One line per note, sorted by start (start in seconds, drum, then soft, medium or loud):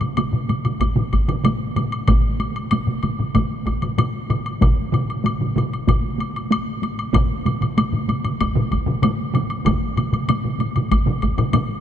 0.01 taiko low-mid medium
0.01 taiko mid medium
0.01 taiko high soft
0.01 high woodblock soft
0.17 taiko low-mid medium
0.17 taiko mid medium
0.17 taiko high medium
0.17 high woodblock medium
0.33 taiko low-mid medium
0.33 taiko mid medium
0.33 taiko high soft
0.49 taiko low-mid medium
0.49 taiko mid medium
0.49 taiko high medium
0.49 high woodblock soft
0.65 taiko low-mid medium
0.65 taiko mid medium
0.65 taiko high soft
0.65 high woodblock soft
0.81 taiko medium
0.81 taiko high medium
0.81 high woodblock soft
0.96 taiko low-mid medium
0.96 taiko mid medium
0.96 taiko high soft
1.13 taiko medium
1.13 taiko high soft
1.13 high woodblock soft
1.28 taiko low-mid medium
1.28 taiko mid medium
1.28 high woodblock soft
1.44 taiko low-mid medium
1.44 taiko mid medium
1.44 taiko high medium
1.44 high woodblock medium
1.61 taiko high soft
1.76 taiko low-mid medium
1.76 taiko mid medium
1.76 taiko high medium
1.76 high woodblock soft
1.92 taiko high soft
1.92 high woodblock soft
2.08 taiko loud
2.08 taiko low-mid medium
2.08 taiko mid medium
2.08 taiko high medium
2.08 high woodblock medium
2.25 taiko high soft
2.40 taiko high medium
2.40 high woodblock soft
2.56 taiko high soft
2.56 high woodblock soft
2.71 taiko low-mid medium
2.71 taiko mid medium
2.71 taiko high medium
2.71 high woodblock medium
2.87 taiko low-mid medium
2.87 taiko mid medium
2.87 taiko high soft
3.03 taiko low-mid medium
3.03 taiko mid medium
3.03 taiko high soft
3.03 high woodblock soft
3.19 taiko low-mid medium
3.19 taiko mid medium
3.19 taiko high soft
3.35 taiko medium
3.35 taiko low-mid loud
3.35 taiko mid medium
3.35 taiko high medium
3.35 high woodblock soft
3.51 taiko high soft
3.67 taiko medium
3.67 taiko high medium
3.67 high woodblock soft
3.82 taiko low-mid medium
3.82 taiko mid medium
3.82 high woodblock soft
3.98 taiko low-mid medium
3.98 taiko mid medium
3.98 taiko high medium
3.98 high woodblock medium
4.13 taiko high soft
4.30 taiko low-mid medium
4.30 taiko mid medium
4.30 high woodblock soft
4.45 taiko high soft
4.45 high woodblock soft
4.61 taiko loud
4.61 taiko low-mid medium
4.61 taiko mid medium
4.61 taiko high medium
4.61 high woodblock soft
4.77 taiko high soft
4.93 taiko low-mid medium
4.93 taiko mid medium
4.93 taiko high medium
4.93 high woodblock soft
5.08 taiko high soft
5.08 high woodblock soft
5.24 taiko low-mid medium
5.24 taiko mid medium
5.24 taiko high medium
5.24 high woodblock medium
5.40 taiko low-mid medium
5.40 taiko mid medium
5.40 taiko high soft
5.56 taiko low-mid medium
5.56 taiko mid medium
5.56 taiko high medium
5.56 high woodblock soft
5.72 taiko high soft
5.72 high woodblock soft
5.87 taiko medium
5.87 taiko low-mid loud
5.87 taiko mid medium
5.87 taiko high medium
5.87 high woodblock medium
6.03 taiko high soft
6.19 taiko high medium
6.19 high woodblock soft
6.36 high woodblock soft
6.51 taiko high medium
6.51 high woodblock medium
6.66 taiko high soft
6.82 taiko high medium
6.82 high woodblock soft
6.98 taiko high soft
6.98 high woodblock soft
7.13 taiko loud
7.13 taiko low-mid medium
7.13 taiko mid medium
7.13 taiko high medium
7.13 high woodblock medium
7.30 taiko high soft
7.45 taiko low-mid medium
7.45 taiko mid medium
7.45 taiko high medium
7.45 high woodblock soft
7.61 taiko low-mid medium
7.61 taiko mid medium
7.61 taiko high soft
7.61 high woodblock soft
7.77 taiko low-mid medium
7.77 taiko mid medium
7.77 taiko high medium
7.77 high woodblock medium
7.92 taiko low-mid medium
7.92 taiko mid medium
7.92 taiko high soft
8.08 taiko low-mid medium
8.08 taiko mid medium
8.08 taiko high medium
8.08 high woodblock soft
8.25 taiko low-mid medium
8.25 taiko mid medium
8.25 taiko high soft
8.25 high woodblock soft
8.41 taiko medium
8.41 taiko high medium
8.41 high woodblock medium
8.55 taiko low-mid medium
8.55 taiko mid medium
8.72 taiko medium
8.72 taiko high medium
8.72 high woodblock soft
8.86 taiko low-mid medium
8.86 taiko mid medium
9.02 taiko low-mid loud
9.02 taiko mid loud
9.02 taiko high medium
9.02 high woodblock medium
9.20 taiko high soft
9.34 taiko low-mid loud
9.34 taiko mid loud
9.34 taiko high medium
9.34 high woodblock soft
9.50 taiko high soft
9.50 high woodblock soft
9.65 taiko medium
9.65 taiko low-mid medium
9.65 taiko mid loud
9.65 taiko high medium
9.65 high woodblock medium
9.83 taiko high soft
9.97 taiko low-mid medium
9.97 taiko mid medium
9.97 taiko high medium
9.97 high woodblock soft
10.13 taiko low-mid medium
10.13 taiko mid medium
10.13 taiko high soft
10.13 high woodblock soft
10.28 taiko low-mid medium
10.28 taiko mid medium
10.28 taiko high medium
10.28 high woodblock medium
10.44 taiko low-mid medium
10.44 taiko mid medium
10.44 taiko high soft
10.60 taiko low-mid medium
10.60 taiko mid medium
10.60 taiko high medium
10.60 high woodblock soft
10.75 taiko low-mid medium
10.75 taiko mid medium
10.75 taiko high soft
10.75 high woodblock soft
10.91 taiko medium
10.91 taiko high medium
10.91 high woodblock medium
11.06 taiko low-mid medium
11.06 taiko mid medium
11.06 taiko high soft
11.22 taiko medium
11.22 taiko high medium
11.22 high woodblock soft
11.38 taiko low-mid loud
11.38 taiko mid medium
11.38 high woodblock soft
11.53 taiko low-mid loud
11.53 taiko mid medium
11.53 taiko high medium
11.53 high woodblock medium
11.69 taiko high soft